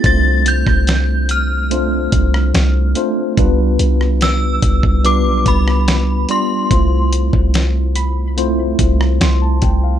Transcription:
<<
  \new Staff \with { instrumentName = "Synth bell" } { \time 4/4 \key d \dorian \tempo 4 = 72 a'''8 g'''4 f'''2 r8 | r4 e'''4 d'''8 b''4 c'''8~ | c'''8 r2. r8 | }
  \new Staff \with { instrumentName = "Synth pluck" } { \time 4/4 \key d \dorian r1 | r1 | r4. b''2~ b''8 | }
  \new Staff \with { instrumentName = "Tine electric piano" } { \time 4/4 \key d \dorian << { r1 | r1 | r2. c'''16 a''16 g''16 f''16 | } \\ { <a c' d' f' c''>4. r8 <a c' d' f' c''>4~ <a c' d' f' c''>16 r16 <a c' d' f' c''>8 | <g b d' f' b'>4. r8 <g b d' f' b'>4~ <g b d' f' b'>16 r16 <g b d' f' d''>8 | <a c' e' f' c''>4. r8 <a c' e' f' c''>4~ <a c' e' f' c''>16 r8. | } >> }
  \new Staff \with { instrumentName = "808-style bass" } { \clef bass \time 4/4 \key d \dorian c,8. c,4.~ c,16 c,8 c,8 r8 | c,8 c,4 c,16 c,8 b,,16 c,4 r8 | c,8. c,4.~ c,16 c,8 c,8 c,8 | }
  \new DrumStaff \with { instrumentName = "Drums" } \drummode { \time 4/4 <hh bd>8 hh16 <bd ss>16 <hh sn>8 hh8 hh8 <hh bd>16 ss16 <hh sn>8 hh8 | <hh bd>8 hh16 ss16 <hh sn>8 <hh bd>16 bd16 hh8 <hh bd>16 ss16 <hh sn>8 hh8 | <hh bd>8 hh16 bd16 <hh sn>8 hh8 hh8 <hh bd>16 ss16 <hh sn>8 <hh bd>8 | }
>>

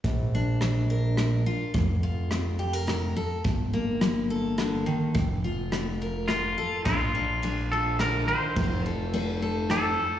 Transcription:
<<
  \new Staff \with { instrumentName = "Clean electric guitar" } { \time 3/4 \key bes \major \tempo 4 = 106 r2. | r2. | r2. | r2 f'4 |
f'4. a'8 bes'8 c''8~ | c''8 r4. a'4 | }
  \new Staff \with { instrumentName = "Steel-string acoustic guitar" } { \time 3/4 \key bes \major << { r8 d'4 bes'4 f'8 | r8 f'4 g'16 bes'8. a'8 | r8 bes4 a'4. | r8 f'4 bes'4 a'8 |
d'8 d'8 d'8 f'4. | f'8 a'8 a'8 a'4. | } \\ { bes,4 f4 bes,4 | f4 c'4 c4 | g,4 g4 d8 ees8 | f4 c'4 c4 |
bes,4 f4 d8 ees8 | f4 c'4 c'4 | } >> }
  \new Staff \with { instrumentName = "Analog synth bass" } { \clef bass \time 3/4 \key bes \major bes,,2. | f,,2. | g,,2. | f,,2. |
bes,,2. | f,,2. | }
  \new DrumStaff \with { instrumentName = "Drums" } \drummode { \time 3/4 <hh bd>4 <hh ss>4 <hh ss>4 | <hh bd>4 <hh ss>4 <hh ss>4 | <hh bd>4 <hh ss>4 <hh ss>4 | <hh bd>4 <hh ss>4 <hh ss>4 |
<bd cymr>4 cymr4 <cymr ss>4 | <bd cymr>4 cymr4 <cymr ss>4 | }
>>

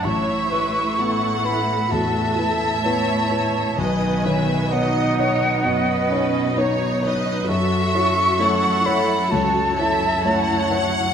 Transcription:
<<
  \new Staff \with { instrumentName = "Flute" } { \time 4/4 \key fis \minor \tempo 4 = 65 cis'''4. b''8 a''2 | gis''4 fis''2 r4 | cis'''4. b''8 a''2 | }
  \new Staff \with { instrumentName = "Violin section" } { \time 4/4 \key fis \minor e''4 fis''4 e''2 | dis''8 e''8 dis''8 cis''8 b'4 cis''8 dis''8 | e''4 fis''4 cis''8 e''8 fis''4 | }
  \new Staff \with { instrumentName = "Viola section" } { \time 4/4 \key fis \minor << { cis''8 b'8 a'4 a'4 cis''4 | b'4 dis''4 dis''4 cis''8 b'8 | a'2. cis''4 | } \\ { e'2 fis'8 e'4. | dis4 dis'4 b8 cis'8 dis'4 | fis'4 e'8 e'8 fis'8 e'4. | } >> }
  \new Staff \with { instrumentName = "Grand piano" } { \time 4/4 \key fis \minor a,,8 <e' b'>8 <b e' b'>8 <e' b'>8 e,8 <e' b'>8 <b e' b'>8 <e' b'>8 | b,,8 <dis cis''>8 <b dis' cis''>8 <dis' cis''>8 fis,8 <dis' cis''>8 <b dis' cis''>8 <dis' cis''>8 | fis,8 <e' cis''>8 <a e' cis''>8 <e' cis''>8 cis,8 <e' cis''>8 <a e' cis''>8 <e' cis''>8 | }
  \new Staff \with { instrumentName = "Cello section" } { \clef bass \time 4/4 \key fis \minor a,1 | b,1 | fis,1 | }
>>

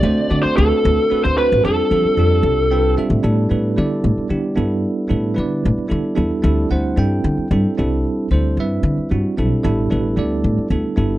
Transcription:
<<
  \new Staff \with { instrumentName = "Lead electric guitar" } { \time 6/8 \key a \minor \tempo 4. = 75 d''8. c''16 a'4~ a'16 c''16 b'8 | a'2~ a'8 r8 | r2. | r2. |
r2. | r2. | r2. | }
  \new Staff \with { instrumentName = "Tine electric piano" } { \time 6/8 \key a \minor << { r2. | r2 g''8 e''8 | r8 b'8 d''4. r8 | r8 b'8 d''4. r8 |
r8 fis''8 g''4. r8 | r8 c''8 e''4 r4 | r8 b'8 d''4 r4 | } \\ { <a c' d' fis' c''>8 <a c' d' fis' d''>8 <a c' d' fis' b'>4 <a c' d' fis' b'>8 <a c' d' fis' c''>8 | <g c' d' f' a'>8 <g c' d' f' a'>8 <g c' d' f' g'>4 <g c' d' f' b'>8 <g c' d' f' a'>8 | <g b d' e' a'>8 <g b d' e' a'>8 <g b d' e' a'>4 <g b d' e' g'>8 <g b d' e' a'>8~ | <g b d' e' a'>8 <g b d' e' a'>8 <g b d' e' b'>4 <g b d' e' a'>8 <g b d' e' a'>8 |
<g c' d' e' a'>8 <g c' d' e' c''>8 <g c' d' e' a'>4 <g c' d' e' a'>8 <g c' d' e' a'>8~ | <g c' d' e' a'>8 <g c' d' e' a'>8 <g c' d' e' b'>4 <g c' d' e' fis'>8 <g c' d' e' a'>8 | <g b d' e' a'>8 <g b d' e' a'>8 <g b d' e' a'>4 <g b d' e' a'>8 <g b d' e' a'>8 | } >> }
  \new Staff \with { instrumentName = "Upright bass" } { \clef bass \time 6/8 \key a \minor d,16 r16 d16 r16 d,16 r16 d,16 r8 d,8 a,,16 | f,16 r16 f16 r16 f,8 c,4 r16 a,16 | a,8 a,8 d8 a,16 r16 d16 r16 g,8 | r8 a,8 d8 a,16 r16 d16 r16 e,16 r16 |
d,8 d,8 g,8 d16 r16 g,16 r16 c,8 | r8 d,8 g,8 d16 r16 g,16 r16 b,,16 r16 | a,,8 a,,8 d,8 a,16 r16 d,16 r16 g,,8 | }
>>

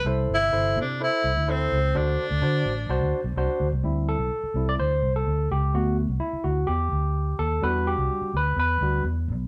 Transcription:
<<
  \new Staff \with { instrumentName = "Tine electric piano" } { \time 4/4 \key d \mixolydian \tempo 4 = 127 << { <e' a' c''>8 r8 <e' a' c''>8 r8 <e' a' c''>8 r8 <e' a' c''>8 r8 | <d' fis' c''>8 r8 <d' fis' c''>8 r8 <d' fis' c''>8 r8 <d' fis' c''>8 r8 | r8 a'4~ a'16 d''16 c''8. a'8. g'8 | r4 e'8 fis'8 g'4. a'8 |
b'8 g'4 b'8 b'4 r4 | } \\ { c4. r2 r8 | d4. r2 r8 | <g c' e'>8 r4 <g c' e'>8 r2 | <a b fis'>8 r2. r8 |
<g d' fis'>4. r4 <g d' fis'>8 r4 | } >> }
  \new Staff \with { instrumentName = "Tenor saxophone" } { \time 4/4 \key d \mixolydian r8 e'4 d'8 e'4 c'4 | d'2. r4 | r1 | r1 |
r1 | }
  \new Staff \with { instrumentName = "Fingered electric bass" } { \clef bass \time 4/4 \key d \mixolydian c,8 g,,8 g,,8 c8. r16 c,16 d,8. cis,8 | d,8 r16 d,16 d8 a,,8 c,16 d,16 r16 b,,16 c,16 r16 d,16 c,16 | d,8. b,,16 r8 c,8 d,8 c,8 d,8 cis,8 | d,8. c,16 r8 d,8 e,8 d,4 ees,8 |
e,8. c,16 r8 d,8 e,8 d,8 e,8 b,,8 | }
>>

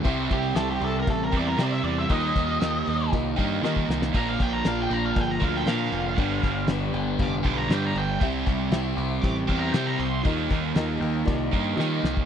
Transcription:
<<
  \new Staff \with { instrumentName = "Lead electric guitar" } { \time 4/4 \key c \major \tempo 4 = 118 r8 g'8 a'16 g'16 a'16 bes'16 a'16 bes'16 d''16 bes'16 d''16 e''16 d''16 e''16 | ees''2 r2 | bes''16 f''16 g''16 bes''16 f''16 g''16 bes''16 f''16 g''16 bes''16 f''16 g''16 f''4~ | f''4 r4 d'''16 r16 d'''16 bes''16 g''16 bes''16 g''8 |
r2 d'''16 r16 d'''16 bes''16 g''16 bes''16 c'''8 | r1 | }
  \new Staff \with { instrumentName = "Honky-tonk piano" } { \time 4/4 \key c \major << { r1 | r2 r8 ees''8 g''8 bes''8 | r1 | r1 |
r1 | r1 | } \\ { <e' g' c'' e''>4 <e' g' c'' e''>4 <e' g' c'' e''>4 <e' g' c'' d''>4 | <f' g' bes' ees''>4 <f' g' bes' ees''>4 <f' g' bes' ees''>4 <f' g' bes' ees''>4 | <d' f' bes' d''>4 <d' f' bes' d''>4 <d' f' bes' d''>4 <d' f' bes' f''>4 | <d' g' b' d''>4 <d' g' b' d''>4 <d' g' b' f''>4 <d' g' b' d''>4 |
<e' g' c'' e''>4 <e' g' c'' e''>4 <e' g' c'' g''>4 <e' g' c'' g''>4 | <f' g' bes' ees''>4 <f' g' bes' ees''>4 <f' g' bes' d''>4 <f' g' bes' ees''>4 | } >> }
  \new Staff \with { instrumentName = "Overdriven electric guitar" } { \time 4/4 \key c \major <c g c' e' g'>8 <c' e' g'>8 <g c' e' g'>8 <c' e' g'>4 <c' e' g'>8 <c g c' e' g'>4 | <ees g bes ees' g'>8 <bes ees' g'>8 <g bes ees' g'>8 <bes ees' g'>4 <bes ees' g'>8 <ees g bes ees' g'>4 | <bes, d f bes d' bes'>8 <f bes d' bes'>8 <f bes d' bes'>8 <f bes d' bes'>4 <f bes d' bes'>8 <bes, d f bes d' bes'>4 | <g, d g b d' g'>8 <g b d' g'>8 <g b d' g'>8 <g b d' g'>4 <g b d' g'>8 <g, d g b d' g'>4 |
<c g c' e' g'>8 <c' e' g'>8 <g c' e' g'>8 <c' e' g'>4 <c' e' g'>8 <c g c' e' g'>4 | <ees g bes ees' g'>8 <bes ees' g'>8 <g bes ees' g'>8 <bes ees' g'>4 <bes ees' g'>8 <ees g bes ees' g'>4 | }
  \new Staff \with { instrumentName = "Overdriven electric guitar" } { \clef bass \time 4/4 \key c \major <c g c'>2~ <c g c'>8 <c g c'>8 <c g c'>4 | <ees bes ees'>2~ <ees bes ees'>8 <ees bes ees'>8 <ees bes ees'>4 | <bes, f bes>2~ <bes, f bes>8 <bes, f bes>8 <bes, f bes>4 | <g, d g>2~ <g, d g>8 <g, d g>8 <g, d g>4 |
<c g c'>2~ <c g c'>8 <c g c'>8 <c g c'>4 | <ees bes ees'>2~ <ees bes ees'>8 <ees bes ees'>8 <ees bes ees'>4 | }
  \new Staff \with { instrumentName = "Picked electric bass" } { \clef bass \time 4/4 \key c \major c,8 c,8 c,8 c,8 a,,8 e,8 c8 e,8 | ees,8 ees,8 ees,8 ees,8 c,8 g,8 ees8 c,8 | bes,,8 bes,,8 bes,,8 bes,,8 g,,8 d,8 bes,8 f,,8 | g,,8 g,,8 g,,8 g,,8 f,,8 b,,8 g,8 g,,8 |
c,8 c,8 c,8 c,8 a,,8 e,8 c8 c,8 | ees,8 ees,8 ees,8 ees,8 c,8 g,8 ees8 c,8 | }
  \new DrumStaff \with { instrumentName = "Drums" } \drummode { \time 4/4 <cymc bd>8 <cymc bd>8 <cymc sn>8 cymc8 <cymc bd>8 <cymc bd>8 <cymc sn>16 sn16 cymc8 | <cymc bd>8 <cymc bd sn>8 <cymc sn>8 cymc8 <cymc bd>8 <cymc bd>8 sn16 bd16 sn16 sn16 | <cymc bd>8 <cymc bd sn>8 <cymc sn>8 cymc8 <cymc bd>8 <cymc bd>8 <cymc sn>8 cymc8 | <cymc bd>8 <cymc bd sn>8 <cymc sn>8 cymc8 <cymc bd>8 <cymc bd>8 <cymc sn>8 cymc8 |
<cymc bd>8 <cymc bd sn>8 <cymc sn>8 cymc8 <cymc bd>8 <cymc bd>8 <cymc sn>16 sn16 cymc8 | <cymc bd>8 <cymc bd sn>8 <cymc sn>8 cymc8 <cymc bd>8 <cymc bd>8 sn8 sn16 bd16 | }
>>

